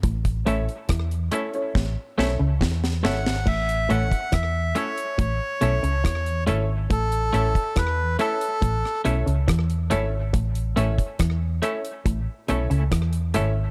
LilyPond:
<<
  \new Staff \with { instrumentName = "Melodica" } { \time 4/4 \key a \major \tempo 4 = 70 r2. r8 fis''8 | e''8 fis''8 e''8 cis''8 cis''4. r8 | a'4 b'8 a'4 r4. | r1 | }
  \new Staff \with { instrumentName = "Upright piano" } { \time 4/4 \key a \major r8 <cis' e' a' cis''>16 r8. <cis' e' a' cis''>16 <cis' e' a' cis''>16 r8 <cis' e' a' cis''>16 r8. <cis' e' a' cis''>16 r16 | r8 <cis' e' a' cis''>16 r8. <cis' e' a' cis''>16 r8. <cis' e' a' cis''>16 r8. <cis' e' a' cis''>16 r16 | r8 <cis' e' a' cis''>16 r8. <cis' e' a' cis''>16 r8. <cis' e' a' cis''>16 r8. <cis' e' a' cis''>16 r16 | r8 <cis' e' a' cis''>16 r8. <cis' e' a' cis''>16 r8. <cis' e' a' cis''>16 r8. <cis' e' a' cis''>16 r16 | }
  \new Staff \with { instrumentName = "Clean electric guitar" } { \time 4/4 \key a \major r8 <a cis' e' a'>16 r8. <a cis' e' a'>16 r8. <a cis' e' a'>16 r8. <a cis' e' a'>16 r16 | r8 <a cis' e' a'>16 r8. <a cis' e' a'>16 r8. <a cis' e' a'>16 r8. <a cis' e' a'>16 r16 | r8 <a cis' e' a'>16 r8. <a cis' e' a'>16 r8. <a cis' e' a'>16 r8. <a cis' e' a'>16 r16 | r8 <a cis' e' a'>16 r8. <a cis' e' a'>16 r8. <a cis' e' a'>16 <a cis' e' a'>16 r8 <a cis' e' a'>16 r16 | }
  \new Staff \with { instrumentName = "Clean electric guitar" } { \clef bass \time 4/4 \key a \major a,8 a,16 r16 e8 r8 a,16 r16 b,16 cis16 e8 gis,8 | a,8 a,16 r16 e8 r8 a,16 r16 b,16 cis16 e8 gis,8 | a,8 a,16 r16 e8 r8 a,16 r16 b,16 cis16 e8 gis,8 | a,8 a,16 r16 e8 r8 a,16 r16 b,16 cis16 e8 gis,8 | }
  \new Staff \with { instrumentName = "Fingered electric bass" } { \clef bass \time 4/4 \key a \major a,,8 a,,16 r16 e,8 r8 a,,16 r16 b,,16 cis,16 e,8 gis,,8 | a,,8 a,,16 r16 e,8 r8 a,,16 r16 b,,16 cis,16 e,8 gis,,8 | r8 a,,16 r16 e,8 r8 a,,16 r16 b,,16 cis,16 e,8 gis,,8 | a,,8 a,,16 r16 e,8 r8 a,,16 r16 b,,16 cis,16 e,8 gis,,8 | }
  \new DrumStaff \with { instrumentName = "Drums" } \drummode { \time 4/4 <hh bd>16 <hh bd>16 hh16 hh16 <hh bd ss>16 hh16 hh16 hh16 <bd sn>8 sn8 <bd sn>16 sn16 sn16 sn16 | <cymc bd>16 hh16 hh16 <hh bd>16 <hh bd ss>8 hh16 hh16 <hh bd>8 hh16 hh16 <hh bd ss>16 hh16 hh8 | <hh bd>16 hh16 hh16 <hh bd>16 <hh bd ss>8 hh16 hh16 <hh bd>16 ss16 hh16 hh16 <hh bd ss>16 hh16 hh8 | <hh bd>16 hh16 hh16 <hh bd>16 <hh bd ss>8 hh16 hh16 <hh bd>8 hh16 hh16 <hh bd ss>16 hh16 hh8 | }
>>